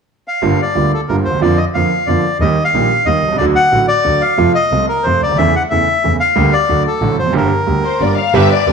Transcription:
0.28 bandoneon F5
0.42 grand piano G1 G2 D3 G3 A#3 F4, double bass G1
0.62 bandoneon D5
0.75 grand piano D2 D3 G3 A#3 F4, double bass D2
0.94 bandoneon A4
1.09 grand piano G1 G2 D3 G3 A#3 F4, double bass G1, bandoneon A#4
1.25 double bass D#2, bandoneon C5
1.30 grand piano D2 D#2
1.38 grand piano E2 F2 D3 F3 A#3 F4, double bass F2, bandoneon D5
1.57 bandoneon D#5
1.74 double bass F2, grand piano F2 D3 F3 A#3 F4, bandoneon F5
2.07 double bass F2, grand piano F2 D3 F3 A#3 F4, bandoneon D5
2.40 double bass D#2, grand piano D#2 D#3 G3 A#3 G4, bandoneon D#5
2.64 bandoneon F5
2.73 double bass A#1, grand piano A#1 A#2 D#3 G3 A#3 G4
3.06 double bass D#2, grand piano D#2 D#3 G3 A#3 G4, bandoneon D#5
3.24 double bass C2
3.28 grand piano B1
3.32 grand piano C2 C#2
3.38 double bass D2, grand piano D2 D3 F#3 A3 F#4, bandoneon D5
3.55 bandoneon F#5
3.72 double bass A1, grand piano A1 A2 D3 F#3 A3 F#4
3.88 bandoneon D5
4.04 grand piano D2 D3 F#3 A3 F#4, double bass D2
4.21 bandoneon F5
4.37 grand piano F2 C3 F3 A3 F4, double bass F2
4.55 bandoneon D#5
4.72 double bass C2, grand piano C2 C3 F3 A3 F4
4.89 bandoneon A#4
5.04 double bass F2, grand piano F2 C3 F3 A3 F4, bandoneon C5
5.23 grand piano C#2, double bass D2, bandoneon D5
5.31 grand piano D2
5.36 grand piano D#2 E2 C#3 E3 A3, double bass E2, bandoneon E5
5.40 grand piano E4
5.55 bandoneon F#5
5.70 double bass E2, grand piano E2 C#3 E3 A3 E4, bandoneon E5
6.04 grand piano E2 C#3 E3 A3 E4, double bass E2
6.20 bandoneon F5
6.36 grand piano D2 D3 G3 A#3 G4, double bass D2
6.53 bandoneon D5
6.69 grand piano D2 D3 F#3 A3 F#4, double bass D2
6.87 bandoneon A4
7.01 grand piano A1 A2 D3 F#3 A3 F#4, double bass A1
7.19 double bass F1, grand piano E2, bandoneon C5
7.26 grand piano F2
7.30 grand piano G1 F#2 G2 D3 G3 A#3 G4, double bass G1
7.36 bandoneon A#4
7.66 grand piano D2 D3 G3 A#3 G4, double bass D2
7.85 violin section C5
8.00 double bass G1, grand piano G1 G2 D3 G3 A#3 G4, violin section D5
8.18 violin section F5
8.34 grand piano G1 G2 D3 G3 B3 G4, double bass G1, string section D4 G4 B4, violin section E5
8.51 violin section D5
8.67 double bass D2, grand piano D2 D3 G3 B3 G4, string section D4 G4 B4

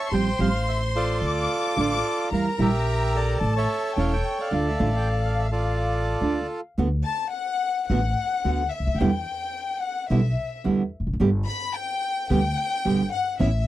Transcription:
Already playing: bandoneon A5, violin section C#6
0.11 upright bass A1, nylon-string guitar F3 G3 C4 G4, bandoneon C5 G5, violin section C6
0.39 upright bass A1, nylon-string guitar F3 G3 C4 G4, bandoneon F5
0.69 bandoneon E5
0.96 bandoneon F4 A4 D5
1.21 upright bass D2, violin section D6
1.76 upright bass A1, nylon-string guitar D3 A3 D4 F4, bandoneon F4 A4 D5
2.31 upright bass E2, nylon-string guitar E3 G3 E4, bandoneon A#4 F5, violin section A#5
2.58 upright bass A#1, nylon-string guitar E3 G3 E4, bandoneon G4 A#4 E5
3.15 bandoneon A4 D5
3.40 upright bass A1, violin section A5
3.56 bandoneon A4 C#5 E5
3.96 upright bass E1, nylon-string guitar E3 A3 C#4 E4, bandoneon F5, violin section G5
4.13 bandoneon G5
4.40 bandoneon A4 D5 F5
4.51 upright bass D2, nylon-string guitar D3 A3 D4 F4, violin section F5
4.68 bandoneon E5
4.79 upright bass A1, nylon-string guitar D3 A3 D4 F4
4.97 bandoneon G5
5.25 bandoneon F5
5.39 bandoneon E5
5.52 bandoneon F4 A4 D5
6.21 upright bass D2, nylon-string guitar D3 A3 D4 F4
6.78 upright bass D2, nylon-string guitar D3 A3 B3 F#4
7.06 violin section A5
7.32 violin section F#5
7.88 upright bass A1, nylon-string guitar D3 A3 B3 F#4, violin section F#5
8.44 upright bass D2, nylon-string guitar D3 A3 B3 F#4
8.71 violin section E5
8.80 upright bass C#2
8.87 upright bass D2
8.95 upright bass D#2, violin section G5
9.00 upright bass E2, nylon-string guitar B2 D3 G3 B3 E4
9.80 violin section F#5
10.10 upright bass B1, nylon-string guitar B2 D3 G3 B3 E4, violin section E5
10.64 upright bass E2, nylon-string guitar B2 D3 G3 B3 E4
11.00 upright bass E1
11.07 upright bass F1
11.13 upright bass F#1
11.20 upright bass G1, nylon-string guitar B2 D3 G3 B3 G4
11.47 violin section B5
11.76 violin section G5
12.30 upright bass D2, nylon-string guitar B2 D3 G3 B3 G4, violin section G5
12.85 upright bass G1, nylon-string guitar B2 D3 G3 B3 G4
13.12 violin section F#5
13.39 upright bass A1, nylon-string guitar E3 B3 C#4 E4, violin section E5

